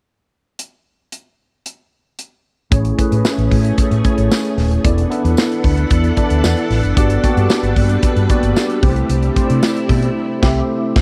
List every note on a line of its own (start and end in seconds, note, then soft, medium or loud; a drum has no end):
0.59 closed hi-hat medium
1.12 closed hi-hat medium
1.66 closed hi-hat medium
2.19 closed hi-hat medium
2.71 2.90 A1 loud
2.71 2.96 A3 medium
2.71 4.82 A3 medium
2.71 2.96 C#4 medium
2.71 4.82 C#4 medium
2.71 2.96 E4 medium
2.71 4.82 G#4 medium
2.71 2.97 G#4 medium
2.71 2.97 C#5 medium
2.71 kick loud
2.71 closed hi-hat medium
2.85 closed hi-hat medium
2.97 3.97 A3 medium
2.97 3.97 C#4 medium
2.97 3.97 E4 medium
2.97 3.97 G#4 medium
2.97 3.97 B4 medium
2.97 kick medium
2.97 closed hi-hat medium
3.12 3.21 A2 medium
3.12 closed hi-hat medium
3.25 snare loud
3.25 tambourine medium
3.38 3.47 A1 medium
3.38 closed hi-hat soft
3.51 3.70 A2 loud
3.51 kick medium
3.51 open hi-hat medium
3.64 closed hi-hat medium
3.78 muted fretless electric bass stroke soft
3.78 kick medium
3.78 closed hi-hat medium
3.91 4.00 A2 loud
3.91 closed hi-hat medium
4.04 4.78 A3 medium
4.04 4.78 C#4 medium
4.04 4.79 E4 medium
4.04 4.79 G#4 medium
4.04 4.79 C#5 medium
4.04 kick medium
4.04 closed hi-hat medium
4.18 4.27 A1 medium
4.18 closed hi-hat medium
4.32 snare loud
4.32 tambourine medium
4.45 closed hi-hat soft
4.57 4.76 D#1 medium
4.57 snare soft
4.57 open hi-hat medium
4.71 closed hi-hat soft
4.84 5.03 E1 medium
4.84 6.95 E3 medium
4.84 5.09 B3 medium
4.84 6.95 B3 medium
4.84 5.09 D4 medium
4.84 11.02 D4 medium
4.84 5.09 E4 medium
4.84 5.09 A4 medium
4.84 8.79 A4 medium
4.84 5.09 D5 medium
4.84 8.79 F#5 medium
4.84 kick loud
4.84 closed hi-hat medium
4.98 closed hi-hat medium
5.10 6.09 B3 medium
5.10 6.09 D4 medium
5.10 6.09 E4 medium
5.10 6.10 A4 medium
5.10 6.10 B4 medium
5.10 closed hi-hat medium
5.24 5.34 E2 medium
5.24 closed hi-hat medium
5.37 snare loud
5.37 tambourine medium
5.52 closed hi-hat medium
5.64 5.83 D2 medium
5.64 kick medium
5.64 open hi-hat medium
5.77 closed hi-hat medium
5.90 6.09 E2 loud
5.90 kick medium
5.90 closed hi-hat medium
6.04 closed hi-hat soft
6.16 6.91 B3 medium
6.16 6.91 D4 medium
6.16 6.91 E4 medium
6.16 6.91 A4 medium
6.16 6.91 D5 medium
6.16 kick medium
6.16 closed hi-hat medium
6.30 6.40 D2 medium
6.30 closed hi-hat medium
6.44 6.53 E2 medium
6.44 snare loud
6.44 tambourine medium
6.57 closed hi-hat soft
6.70 6.79 A1 medium
6.70 snare soft
6.70 open hi-hat medium
6.83 6.93 F#1 medium
6.83 closed hi-hat soft
6.96 7.16 G1 medium
6.96 11.02 G3 medium
6.96 7.21 B3 medium
6.96 7.21 D4 medium
6.96 7.22 F#4 medium
6.96 7.22 G4 medium
6.96 8.81 B4 medium
6.96 7.22 D5 medium
6.96 kick loud
6.96 closed hi-hat medium
7.10 closed hi-hat medium
7.23 7.30 A#3 medium
7.23 8.22 D4 medium
7.23 8.22 F#4 medium
7.23 8.22 G4 medium
7.23 8.23 D5 medium
7.23 kick medium
7.23 closed hi-hat medium
7.29 8.25 B3 medium
7.37 7.46 G2 medium
7.37 closed hi-hat medium
7.50 snare loud
7.50 tambourine medium
7.63 7.72 G1 loud
7.63 closed hi-hat soft
7.76 7.95 G2 medium
7.76 kick medium
7.76 open hi-hat medium
7.89 closed hi-hat medium
8.03 muted fretless electric bass stroke soft
8.03 kick medium
8.03 closed hi-hat medium
8.16 8.25 G2 medium
8.16 closed hi-hat soft
8.29 8.36 A#3 medium
8.29 8.83 D4 medium
8.29 8.83 F#4 medium
8.29 8.82 G4 medium
8.29 8.83 D5 medium
8.29 kick medium
8.29 closed hi-hat medium
8.35 8.86 B3 medium
8.43 8.52 G1 medium
8.43 closed hi-hat medium
8.56 snare medium
8.56 tambourine medium
8.70 closed hi-hat soft
8.82 9.01 C2 loud
8.82 11.02 C3 medium
8.82 9.32 A3 medium
8.82 11.02 A3 medium
8.82 9.32 C4 medium
8.82 9.32 E4 medium
8.82 11.02 E4 medium
8.82 9.32 G4 medium
8.82 9.32 C5 medium
8.82 kick loud
8.82 open hi-hat medium
8.96 closed hi-hat soft
9.09 9.28 C2 loud
9.09 closed hi-hat loud
9.23 closed hi-hat medium
9.35 10.15 A3 medium
9.35 10.16 C4 medium
9.35 10.16 E4 medium
9.35 10.16 G4 medium
9.35 10.16 C5 medium
9.35 kick medium
9.35 closed hi-hat medium
9.50 9.59 C3 medium
9.50 closed hi-hat medium
9.63 snare loud
9.63 tambourine medium
9.76 closed hi-hat medium
9.89 10.08 B2 medium
9.89 kick medium
9.89 open hi-hat medium
10.03 closed hi-hat medium
10.42 10.61 C2 medium
10.42 10.60 A3 medium
10.42 10.60 C4 loud
10.42 10.61 E4 medium
10.42 10.61 G4 medium
10.42 10.61 E5 loud
10.42 kick loud
10.42 snare loud
10.42 crash medium
10.96 11.02 C2 medium
10.96 kick loud
10.96 snare medium
10.96 crash medium